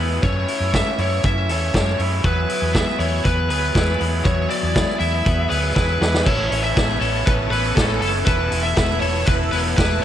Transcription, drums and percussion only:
0.23 kick, closed hi-hat
0.48 open hi-hat
0.74 kick, snare, closed hi-hat
0.98 open hi-hat
1.23 kick, closed hi-hat
1.49 open hi-hat
1.74 kick, snare, closed hi-hat
1.99 open hi-hat
2.24 kick, closed hi-hat
2.49 open hi-hat
2.75 kick, snare, closed hi-hat
3.00 open hi-hat
3.25 kick, closed hi-hat
3.50 open hi-hat
3.75 kick, snare, closed hi-hat
4.00 open hi-hat
4.25 kick, closed hi-hat
4.50 open hi-hat
4.76 kick, snare, closed hi-hat
5.00 open hi-hat
5.26 kick, closed hi-hat
5.51 open hi-hat
5.76 kick, snare
6.02 snare
6.14 snare
6.26 kick, crash
6.52 open hi-hat
6.77 kick, snare, hi-hat pedal, ride
7.02 open hi-hat
7.27 kick, hi-hat pedal, ride
7.52 open hi-hat
7.77 kick, snare, hi-hat pedal, ride
8.02 open hi-hat
8.26 kick, hi-hat pedal, ride
8.52 open hi-hat
8.77 kick, snare, hi-hat pedal, ride
9.02 open hi-hat
9.27 kick, hi-hat pedal, ride
9.53 open hi-hat
9.78 kick, snare, hi-hat pedal, ride

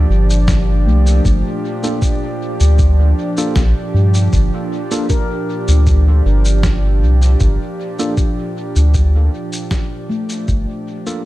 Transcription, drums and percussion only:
0.30 shaker
0.48 kick, snare, shaker
1.07 shaker
1.25 kick, shaker
1.83 shaker
2.02 kick, shaker
2.60 shaker
2.79 kick, shaker
3.37 shaker
3.56 kick, snare, shaker
4.14 shaker
4.33 kick, shaker
4.91 shaker
5.10 kick, shaker
5.68 shaker
5.86 kick, shaker
6.45 shaker
6.63 kick, snare, shaker
7.22 shaker
7.40 kick, shaker
7.99 shaker
8.17 kick, shaker
8.76 shaker
8.94 kick, shaker
9.53 shaker
9.71 kick, snare, shaker
10.30 shaker
10.48 kick, shaker
11.07 shaker

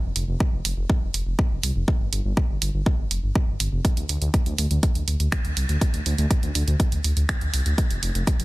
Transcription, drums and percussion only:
0.16 open hi-hat
0.40 kick
0.65 open hi-hat
0.90 kick
1.14 open hi-hat
1.39 kick
1.63 open hi-hat
1.88 kick
2.13 open hi-hat
2.37 kick
2.62 open hi-hat
2.86 kick
3.11 open hi-hat
3.35 kick
3.60 open hi-hat
3.85 kick, closed hi-hat
3.97 closed hi-hat
4.09 open hi-hat
4.22 closed hi-hat
4.34 kick, closed hi-hat
4.46 closed hi-hat
4.58 open hi-hat
4.71 closed hi-hat
4.83 kick, closed hi-hat
4.95 closed hi-hat
5.08 open hi-hat
5.20 closed hi-hat
5.32 finger snap, kick, closed hi-hat
5.45 closed hi-hat
5.57 open hi-hat
5.69 closed hi-hat
5.81 kick, closed hi-hat
5.94 closed hi-hat
6.06 open hi-hat
6.18 closed hi-hat
6.31 kick, closed hi-hat
6.43 closed hi-hat
6.55 open hi-hat
6.68 closed hi-hat
6.80 kick, closed hi-hat
6.92 closed hi-hat
7.04 open hi-hat
7.17 closed hi-hat
7.29 finger snap, kick, closed hi-hat
7.41 closed hi-hat
7.54 open hi-hat
7.66 closed hi-hat
7.78 kick, closed hi-hat
7.91 closed hi-hat
8.03 open hi-hat
8.15 closed hi-hat
8.27 kick, closed hi-hat
8.40 closed hi-hat

